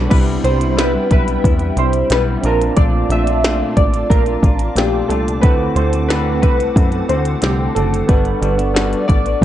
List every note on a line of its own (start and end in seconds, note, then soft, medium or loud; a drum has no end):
0.00 2.40 G3 medium
0.00 0.11 B3 medium
0.00 0.10 D4 soft
0.00 0.11 D4 medium
0.00 0.12 F#4 medium
0.00 0.12 B4 medium
0.00 0.11 F#5 soft
0.00 2.40 B5 medium
0.08 0.38 C2 loud
0.08 0.43 C3 medium
0.08 0.44 G3 medium
0.08 0.44 B3 medium
0.08 2.38 C4 medium
0.08 2.39 D4 medium
0.08 2.40 E4 medium
0.08 0.45 E4 medium
0.08 0.24 B4 loud
0.08 2.41 E5 medium
0.08 2.42 G5 medium
0.08 kick loud
0.08 crash medium
0.13 2.41 G4 medium
0.44 0.98 C2 loud
0.44 0.61 C3 medium
0.44 0.61 G3 medium
0.44 0.61 B3 medium
0.44 0.59 E4 medium
0.44 0.71 C5 medium
0.44 closed hi-hat medium
0.61 0.76 G3 soft
0.61 0.76 B3 soft
0.61 0.76 E4 medium
0.61 closed hi-hat medium
0.72 0.78 C5 medium
0.76 0.94 C3 medium
0.76 0.94 G3 medium
0.76 0.93 B3 medium
0.76 0.92 E4 medium
0.76 1.09 B4 loud
0.76 snare loud
0.76 closed hi-hat loud
0.93 1.11 G3 soft
0.93 1.11 B3 soft
0.93 1.11 E4 medium
1.11 1.38 B1 medium
1.11 1.28 C3 medium
1.11 1.28 G3 medium
1.11 1.28 B3 medium
1.11 1.27 E4 medium
1.11 1.74 B4 loud
1.11 kick medium
1.11 closed hi-hat medium
1.28 1.44 G3 soft
1.28 1.44 B3 soft
1.28 1.44 E4 medium
1.28 closed hi-hat soft
1.44 1.71 E2 loud
1.44 1.61 C3 medium
1.44 1.62 G3 medium
1.44 1.61 B3 medium
1.44 1.59 E4 medium
1.44 kick loud
1.44 closed hi-hat medium
1.59 1.77 G3 soft
1.59 1.78 B3 soft
1.59 1.78 E4 medium
1.59 closed hi-hat soft
1.77 2.04 C2 medium
1.77 2.11 C3 medium
1.77 2.10 G3 medium
1.77 2.10 E4 medium
1.77 2.12 C5 medium
1.77 closed hi-hat medium
1.93 closed hi-hat medium
2.10 2.37 B1 medium
2.10 2.44 G3 medium
2.10 2.44 B3 medium
2.10 2.44 E4 medium
2.10 2.26 B4 medium
2.10 snare loud
2.10 closed hi-hat medium
2.42 2.70 A#1 medium
2.42 2.76 A#2 medium
2.42 5.05 C4 medium
2.42 5.05 D4 medium
2.42 2.77 D4 medium
2.42 5.39 F4 medium
2.42 5.06 F4 medium
2.42 2.77 F4 medium
2.42 2.79 A#4 medium
2.42 5.39 D5 medium
2.42 8.04 A5 medium
2.42 9.45 D6 loud
2.42 closed hi-hat medium
2.47 5.07 A5 medium
2.62 closed hi-hat medium
2.77 3.04 A#1 loud
2.77 3.09 A#2 medium
2.77 3.10 A3 medium
2.77 3.11 D4 medium
2.77 3.11 F4 medium
2.77 3.08 D5 loud
2.77 kick loud
2.77 closed hi-hat medium
3.09 3.63 A#1 loud
3.09 3.27 A#2 medium
3.09 3.28 A3 medium
3.09 3.28 D4 medium
3.09 3.26 F4 medium
3.09 3.74 E5 loud
3.09 closed hi-hat medium
3.27 3.43 A3 soft
3.27 3.44 D4 medium
3.27 3.44 F4 soft
3.27 closed hi-hat medium
3.44 3.75 A#2 medium
3.44 3.76 A3 medium
3.44 3.77 D4 medium
3.44 3.77 F4 medium
3.44 snare loud
3.44 closed hi-hat loud
3.76 4.04 A1 loud
3.76 3.93 A#2 medium
3.76 3.94 A3 medium
3.76 3.93 D4 medium
3.76 3.92 F4 medium
3.76 4.11 D5 medium
3.76 kick medium
3.76 closed hi-hat medium
3.93 4.09 A3 soft
3.93 4.10 D4 soft
3.93 4.10 F4 medium
3.93 closed hi-hat soft
4.09 4.37 A#1 loud
4.09 4.26 A#2 medium
4.09 4.27 A3 medium
4.09 4.27 D4 medium
4.09 4.25 F4 medium
4.09 4.78 A#4 medium
4.09 kick loud
4.09 closed hi-hat medium
4.26 4.44 A3 soft
4.26 4.44 D4 soft
4.26 4.43 F4 medium
4.26 closed hi-hat soft
4.43 4.69 A1 medium
4.43 4.77 D4 medium
4.43 4.77 F4 medium
4.43 kick medium
4.43 closed hi-hat medium
4.59 closed hi-hat medium
4.76 5.03 A#1 medium
4.76 5.09 A#2 medium
4.76 5.09 A3 medium
4.76 5.10 D4 medium
4.76 5.11 F4 loud
4.76 5.11 G4 medium
4.76 snare loud
4.76 closed hi-hat medium
5.08 5.45 C2 medium
5.08 5.43 A#2 medium
5.08 5.43 A3 medium
5.08 5.44 D4 medium
5.08 5.44 F4 medium
5.08 5.43 A4 medium
5.08 closed hi-hat medium
5.28 closed hi-hat soft
5.41 5.70 D2 loud
5.41 5.75 D3 medium
5.41 8.03 C4 medium
5.41 8.04 E4 medium
5.41 5.76 B4 medium
5.41 8.05 F#5 medium
5.41 kick loud
5.41 closed hi-hat medium
5.45 5.76 A3 medium
5.45 8.07 C4 medium
5.45 5.77 C4 medium
5.45 5.77 F#4 loud
5.45 8.06 A4 medium
5.45 9.45 F#5 medium
5.76 6.44 D2 medium
5.76 5.93 D3 medium
5.76 5.93 A3 medium
5.76 5.94 C4 medium
5.76 5.93 F#4 medium
5.76 5.90 C5 medium
5.76 closed hi-hat medium
5.93 6.10 A3 soft
5.93 6.10 C4 medium
5.93 6.10 F#4 medium
5.93 closed hi-hat medium
6.08 6.41 D3 medium
6.08 6.42 A3 medium
6.08 6.43 C4 medium
6.08 6.44 F#4 medium
6.08 6.41 B4 medium
6.08 snare loud
6.08 closed hi-hat loud
6.42 6.69 C2 medium
6.42 6.59 D3 medium
6.42 6.59 A3 medium
6.42 6.60 C4 medium
6.42 6.59 F#4 medium
6.42 7.05 B4 loud
6.42 kick medium
6.42 closed hi-hat medium
6.60 6.76 A3 soft
6.60 6.76 C4 soft
6.60 6.76 F#4 medium
6.60 closed hi-hat soft
6.76 7.02 F#2 medium
6.76 6.93 D3 medium
6.76 6.93 A3 medium
6.76 6.91 C4 medium
6.76 6.90 F#4 medium
6.76 kick loud
6.76 closed hi-hat medium
6.91 7.08 A3 soft
6.91 7.08 C4 medium
6.91 7.08 F#4 medium
6.91 closed hi-hat soft
7.08 7.36 D2 medium
7.08 7.40 D3 medium
7.08 7.40 A3 medium
7.08 7.41 C4 medium
7.08 7.43 F#4 medium
7.08 7.43 C5 medium
7.08 closed hi-hat medium
7.25 closed hi-hat medium
7.41 7.69 C2 loud
7.41 7.74 D3 medium
7.41 7.75 A3 medium
7.41 7.75 C4 medium
7.41 7.74 G4 medium
7.41 snare loud
7.41 closed hi-hat medium
7.75 8.02 F#1 medium
7.75 8.08 D3 medium
7.75 8.07 A3 medium
7.75 8.08 C4 medium
7.75 8.09 F#4 medium
7.75 8.09 A4 medium
7.75 closed hi-hat medium
7.94 closed hi-hat medium
8.07 8.35 G1 loud
8.07 8.41 G3 medium
8.07 9.45 B3 medium
8.07 8.42 B3 medium
8.07 9.45 D4 medium
8.07 8.42 D4 loud
8.07 8.42 F#4 medium
8.07 9.11 B4 medium
8.07 9.45 B4 medium
8.07 9.45 D5 medium
8.07 9.45 F#5 medium
8.07 kick loud
8.07 closed hi-hat medium
8.12 9.45 A4 medium
8.25 closed hi-hat soft
8.42 8.95 G1 loud
8.42 8.58 G3 medium
8.42 8.59 B3 medium
8.42 8.57 D4 medium
8.42 8.57 F#4 medium
8.42 closed hi-hat medium
8.58 8.73 B3 soft
8.58 8.73 D4 soft
8.58 8.74 F#4 medium
8.58 closed hi-hat medium
8.74 9.07 G3 medium
8.74 9.08 B3 medium
8.74 9.08 D4 medium
8.74 9.08 F#4 medium
8.74 snare loud
8.74 closed hi-hat loud
8.93 closed hi-hat soft
9.08 9.35 A1 medium
9.08 9.25 G3 medium
9.08 9.25 B3 medium
9.08 9.25 D4 medium
9.08 9.24 F#4 medium
9.08 9.42 D5 medium
9.08 kick medium
9.08 closed hi-hat medium
9.25 9.41 B3 soft
9.25 9.41 D4 soft
9.25 9.42 F#4 medium
9.25 closed hi-hat soft
9.41 9.45 G1 loud
9.41 9.45 G3 medium